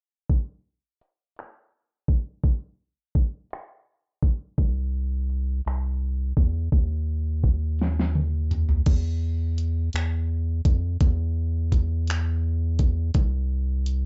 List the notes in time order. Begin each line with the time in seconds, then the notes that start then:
0.29 kick, closed hi-hat
1.01 closed hi-hat
1.36 finger snap, closed hi-hat
2.08 kick, closed hi-hat
2.43 kick, closed hi-hat
3.15 kick, closed hi-hat
3.51 finger snap, closed hi-hat
4.23 kick, closed hi-hat
4.58 C2, kick, closed hi-hat
5.29 closed hi-hat
5.65 C2, finger snap, closed hi-hat
6.37 E2, kick, closed hi-hat
6.72 D#2, kick, closed hi-hat
7.44 kick, closed hi-hat
7.79 snare, closed hi-hat
8.00 snare
8.15 high tom
8.51 closed hi-hat, mid tom
8.69 floor tom
8.86 E2, kick, closed hi-hat, crash
9.58 closed hi-hat
9.93 E2, finger snap, closed hi-hat
10.65 F2, kick, closed hi-hat
11.01 E2, kick, closed hi-hat
11.72 kick, closed hi-hat
12.07 finger snap, closed hi-hat
12.79 kick, closed hi-hat
13.14 C2, kick, closed hi-hat
13.86 closed hi-hat